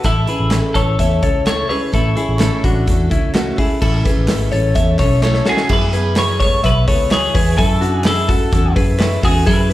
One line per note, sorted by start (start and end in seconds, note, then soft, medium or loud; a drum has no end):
0.04 0.25 A1 medium
0.04 0.28 A3 medium
0.04 0.28 C#4 medium
0.04 0.27 E4 medium
0.04 0.49 E4 loud
0.04 0.29 E4 medium
0.04 0.28 A4 medium
0.04 0.25 A4 medium
0.04 kick loud
0.04 closed hi-hat medium
0.26 0.50 C#4 soft
0.26 0.52 E4 soft
0.26 0.73 G#4 medium
0.26 0.51 A4 medium
0.26 0.73 B4 medium
0.26 closed hi-hat medium
0.40 0.60 A1 medium
0.51 0.75 A3 medium
0.51 0.75 C#4 medium
0.51 0.75 E4 medium
0.51 0.73 A4 loud
0.51 snare loud
0.51 clap medium
0.51 closed hi-hat loud
0.74 0.95 A1 medium
0.74 0.99 C#4 soft
0.74 0.99 E4 medium
0.74 1.46 A4 medium
0.74 0.99 A4 soft
0.74 1.00 A4 medium
0.74 0.99 C#5 medium
0.74 kick medium
0.74 closed hi-hat medium
0.98 1.19 E2 loud
0.98 1.22 A3 medium
0.98 1.23 C#4 medium
0.98 1.22 E4 medium
0.98 1.20 A4 medium
0.98 1.22 C#5 medium
0.98 1.23 E5 medium
0.98 kick medium
0.98 closed hi-hat medium
1.22 1.63 C#2 medium
1.22 1.45 C#4 soft
1.22 1.45 E4 soft
1.22 1.46 A4 medium
1.22 1.45 C#5 medium
1.22 kick loud
1.22 closed hi-hat medium
1.45 1.69 A3 medium
1.45 1.70 C#4 medium
1.45 1.68 E4 medium
1.45 1.66 A4 medium
1.45 1.70 A4 medium
1.45 1.68 C#5 loud
1.45 1.70 C#5 medium
1.45 snare loud
1.45 clap medium
1.45 closed hi-hat medium
1.68 1.91 C#4 soft
1.68 1.92 E4 medium
1.68 1.94 G#4 medium
1.68 1.92 A4 medium
1.68 1.93 B4 medium
1.68 3.31 C#5 loud
1.68 open hi-hat medium
1.92 2.14 A1 loud
1.92 2.16 A3 medium
1.92 2.17 C#4 medium
1.92 2.15 E4 medium
1.92 2.17 E4 medium
1.92 2.17 A4 medium
1.92 2.14 A4 medium
1.92 kick medium
1.92 closed hi-hat medium
2.15 2.38 C#4 soft
2.15 2.39 E4 medium
2.15 2.40 E4 medium
2.15 2.40 G#4 medium
2.15 2.40 A4 medium
2.15 closed hi-hat medium
2.29 2.49 A1 medium
2.39 2.63 A3 loud
2.39 2.63 C#4 loud
2.39 2.61 E4 loud
2.39 2.65 E4 medium
2.39 2.64 A4 medium
2.39 2.60 A4 loud
2.39 snare loud
2.39 clap medium
2.39 closed hi-hat loud
2.61 2.84 A1 medium
2.61 2.86 C#4 soft
2.61 2.87 E4 medium
2.61 3.09 F#4 medium
2.61 2.86 A4 medium
2.61 kick medium
2.61 closed hi-hat medium
2.65 3.09 D4 medium
2.86 3.08 E2 loud
2.86 3.10 A3 medium
2.86 3.11 C#4 medium
2.86 3.10 E4 medium
2.86 3.08 A4 medium
2.86 kick medium
2.86 closed hi-hat medium
3.09 3.51 C#2 medium
3.09 3.34 C#4 medium
3.09 3.33 C#4 medium
3.09 3.34 E4 medium
3.09 3.33 E4 soft
3.09 3.34 A4 medium
3.09 kick loud
3.09 closed hi-hat medium
3.34 3.58 A3 medium
3.34 3.58 C#4 loud
3.34 3.59 C#4 medium
3.34 3.56 E4 medium
3.34 3.58 F#4 medium
3.34 3.55 A4 loud
3.34 snare loud
3.34 clap medium
3.34 closed hi-hat medium
3.56 3.80 C#4 medium
3.56 3.81 E4 medium
3.56 3.81 G#4 medium
3.56 3.81 A4 medium
3.56 kick medium
3.56 open hi-hat medium
3.80 4.02 A1 medium
3.80 4.05 A3 medium
3.80 4.05 C#4 medium
3.80 4.05 E4 medium
3.80 4.06 E4 medium
3.80 4.05 A4 loud
3.80 4.04 A4 medium
3.80 kick loud
3.80 crash medium
4.05 4.28 C#4 medium
4.05 4.29 E4 medium
4.05 4.50 G#4 medium
4.05 4.29 A4 medium
4.05 4.50 B4 medium
4.05 kick loud
4.05 hi-hat pedal medium
4.05 open hi-hat medium
4.17 4.27 A1 medium
4.28 4.49 G#1 loud
4.28 4.52 A3 medium
4.28 4.53 C#4 loud
4.28 4.52 E4 medium
4.28 4.50 A4 loud
4.28 snare loud
4.28 clap medium
4.28 hi-hat pedal medium
4.28 open hi-hat loud
4.51 4.73 A1 medium
4.51 4.75 C#4 soft
4.51 4.76 E4 medium
4.51 4.76 A4 medium
4.51 4.75 C#5 medium
4.51 hi-hat pedal medium
4.51 open hi-hat medium
4.74 4.96 E2 loud
4.74 4.99 A3 medium
4.74 5.00 C#4 medium
4.74 5.00 E4 medium
4.74 4.98 A4 medium
4.74 4.98 C#5 medium
4.74 4.99 E5 medium
4.74 kick loud
4.74 hi-hat pedal medium
4.74 open hi-hat loud
4.98 5.39 B1 medium
4.98 5.23 E4 medium
4.98 5.23 A4 medium
4.98 5.22 A4 medium
4.98 5.21 C#5 medium
4.98 kick loud
4.98 snare soft
4.98 clap medium
4.98 hi-hat pedal medium
4.98 open hi-hat medium
5.02 5.23 C#4 medium
5.22 5.47 A3 loud
5.22 5.47 C#4 loud
5.22 5.46 E4 loud
5.22 5.45 A4 medium
5.22 5.45 A4 loud
5.22 5.47 C#5 medium
5.22 snare medium
5.22 clap medium
5.34 snare medium
5.46 5.71 C#4 medium
5.46 5.70 E4 medium
5.46 5.71 F#4 medium
5.46 5.70 G#4 medium
5.46 5.69 A4 medium
5.46 5.70 A4 medium
5.46 snare loud
5.57 snare medium
5.69 6.60 F#2 medium
5.69 5.94 F#3 medium
5.69 5.94 B3 medium
5.69 5.94 E4 medium
5.69 5.93 G#4 loud
5.69 5.93 G#4 medium
5.69 6.16 B4 loud
5.69 kick loud
5.69 crash medium
5.93 6.18 B3 soft
5.93 6.18 E4 soft
5.93 6.17 G#4 medium
5.93 6.38 G#4 medium
5.93 6.38 B4 medium
5.93 hi-hat pedal medium
5.93 open hi-hat medium
6.16 6.41 F#3 medium
6.16 6.42 B3 medium
6.16 6.42 E4 medium
6.16 6.40 C#5 loud
6.16 snare loud
6.16 clap loud
6.16 hi-hat pedal medium
6.16 open hi-hat loud
6.20 6.40 G#4 medium
6.40 6.64 E4 medium
6.40 6.65 G#4 medium
6.40 6.64 A4 medium
6.40 6.63 C#5 medium
6.40 6.65 C#5 loud
6.40 kick loud
6.40 hi-hat pedal medium
6.40 open hi-hat medium
6.44 6.64 B3 soft
6.64 6.84 B1 loud
6.64 6.88 F#3 medium
6.64 6.88 B3 medium
6.64 6.89 E4 medium
6.64 6.86 G#4 medium
6.64 6.88 B4 medium
6.64 7.09 B4 loud
6.64 6.87 E5 medium
6.64 kick medium
6.64 hi-hat pedal medium
6.64 open hi-hat loud
6.87 7.28 C#2 medium
6.87 7.11 B3 soft
6.87 7.12 E4 medium
6.87 7.11 G#4 medium
6.87 7.12 A4 medium
6.87 7.10 C#5 medium
6.87 kick loud
6.87 hi-hat pedal medium
6.87 open hi-hat medium
7.11 7.35 F#3 medium
7.11 7.35 B3 medium
7.11 7.35 E4 medium
7.11 7.57 G#4 loud
7.11 7.34 G#4 medium
7.11 7.33 G#4 medium
7.11 7.35 C#5 medium
7.11 snare loud
7.11 clap medium
7.11 hi-hat pedal medium
7.11 open hi-hat medium
7.34 7.55 E2 loud
7.34 7.58 B3 soft
7.34 7.57 E4 medium
7.34 7.58 G#4 medium
7.34 7.59 G#4 medium
7.34 7.58 B4 medium
7.34 kick loud
7.34 hi-hat pedal medium
7.34 open hi-hat medium
7.57 8.49 F#2 loud
7.57 7.82 F#3 medium
7.57 7.82 C#4 medium
7.57 7.81 E4 medium
7.57 7.82 E4 medium
7.57 7.95 A4 medium
7.57 7.82 A4 loud
7.57 7.79 A4 medium
7.57 kick loud
7.57 hi-hat pedal medium
7.57 open hi-hat medium
7.81 8.03 C#4 medium
7.81 8.06 D4 medium
7.81 8.05 E4 medium
7.81 8.05 F#4 medium
7.81 8.05 A4 medium
7.81 hi-hat pedal medium
7.81 open hi-hat medium
7.95 8.05 G#4 medium
8.04 8.28 F#3 medium
8.04 8.29 C#4 medium
8.04 8.28 E4 medium
8.04 8.29 E4 medium
8.04 8.28 G#4 medium
8.04 8.73 A4 medium
8.04 8.27 A4 medium
8.04 snare loud
8.04 clap loud
8.04 hi-hat pedal medium
8.04 open hi-hat loud
8.28 8.50 C#4 soft
8.28 8.51 E4 medium
8.28 8.74 F#4 medium
8.28 8.52 A4 medium
8.28 8.73 A4 medium
8.28 kick loud
8.28 hi-hat pedal medium
8.28 open hi-hat medium
8.51 8.73 E2 loud
8.51 8.76 F#3 medium
8.51 8.76 C#4 medium
8.51 8.75 E4 medium
8.51 8.74 A4 medium
8.51 kick loud
8.51 hi-hat pedal medium
8.51 open hi-hat loud
8.76 9.16 F#2 medium
8.76 8.99 C#4 soft
8.76 8.99 E4 medium
8.76 9.00 G#4 medium
8.76 9.00 A4 medium
8.76 8.97 B4 medium
8.76 kick loud
8.76 hi-hat pedal medium
8.76 open hi-hat medium
8.99 9.23 F#3 medium
8.99 9.24 C#4 medium
8.99 9.23 E4 medium
8.99 9.22 E4 medium
8.99 9.20 A4 medium
8.99 9.23 B4 medium
8.99 snare loud
8.99 clap medium
8.99 hi-hat pedal medium
8.99 open hi-hat medium
9.22 9.44 E2 loud
9.22 9.45 C#4 medium
9.22 9.46 E4 medium
9.22 9.46 F#4 medium
9.22 9.46 G#4 medium
9.22 9.46 A4 medium
9.22 9.47 A4 medium
9.22 kick loud
9.22 hi-hat pedal medium
9.22 open hi-hat medium
9.45 9.73 F#2 medium
9.45 9.70 F#3 medium
9.45 9.70 C#4 medium
9.45 9.70 E4 medium
9.45 9.71 E4 medium
9.45 9.70 G#4 loud
9.45 9.69 G#4 medium
9.45 9.73 B4 loud
9.45 kick loud
9.45 hi-hat pedal medium
9.45 open hi-hat medium
9.70 9.73 G#4 medium
9.70 9.73 B4 medium